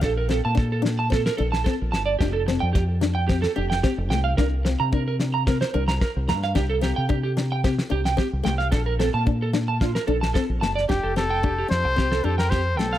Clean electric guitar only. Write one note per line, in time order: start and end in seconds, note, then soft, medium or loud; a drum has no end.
0.04 0.13 A4 medium
0.17 0.26 A#4 medium
0.31 0.40 A4 medium
0.45 0.53 A5 medium
0.58 0.67 A4 medium
0.72 0.80 A4 medium
0.99 1.07 A5 medium
1.12 1.21 A4 medium
1.26 1.34 A#4 medium
1.37 1.47 A4 medium
1.52 1.61 A5 medium
1.64 1.74 A4 medium
1.92 2.02 A5 medium
2.06 2.15 D5 medium
2.19 2.28 G4 medium
2.33 2.42 A4 medium
2.46 muted clean electric guitar stroke medium
2.60 2.69 G5 medium
2.73 2.83 G4 medium
3.15 3.24 G5 medium
3.28 3.37 G4 medium
3.42 3.51 A4 medium
3.56 3.65 G4 medium
3.70 3.78 G5 medium
3.83 3.92 G4 medium
4.10 4.19 G5 medium
4.24 4.33 F5 medium
4.37 4.47 A#4 medium
4.65 muted clean electric guitar stroke medium
4.80 4.88 A#5 loud
4.94 5.02 A#4 medium
5.08 5.16 A#4 medium
5.34 5.42 A#5 medium
5.47 5.56 A#4 medium
5.61 5.69 C5 medium
5.74 5.83 A#4 medium
5.88 5.96 A#5 medium
6.01 6.10 A#4 medium
6.29 6.38 A#5 medium
6.44 6.51 F5 medium
6.55 6.64 G4 medium
6.70 6.78 A4 medium
6.83 6.91 G4 medium
6.96 7.05 G5 medium
7.09 7.18 G4 medium
7.23 7.32 G4 medium
7.52 7.60 G5 medium
7.65 7.73 G4 medium
7.91 8.00 G4 medium
8.06 8.14 G5 medium
8.18 8.27 G4 medium
8.45 8.54 G5 medium
8.58 8.67 F5 medium
8.72 8.81 A4 medium
8.86 8.94 A#4 medium
8.99 9.08 A4 medium
9.14 9.22 A5 loud
9.28 muted clean electric guitar stroke medium
9.42 9.50 A4 medium
9.68 9.76 A5 medium
9.81 9.90 F4 medium
9.95 10.03 A#4 medium
10.07 10.16 A4 medium
10.21 10.30 A5 medium
10.34 10.43 A4 medium
10.61 10.71 A5 medium
10.76 10.84 D5 medium
10.89 10.98 G4 medium
11.03 11.12 A4 medium
11.17 11.25 G4 medium
11.30 11.39 G5 medium
11.44 11.53 G4 medium
11.58 11.66 G4 medium
11.85 muted clean electric guitar stroke medium
11.98 12.07 G4 medium
12.12 12.20 A4 medium
12.25 12.34 G4 medium
12.38 12.47 G5 medium
12.51 12.60 G4 medium
12.77 12.87 G5 medium
12.93 12.98 F5 medium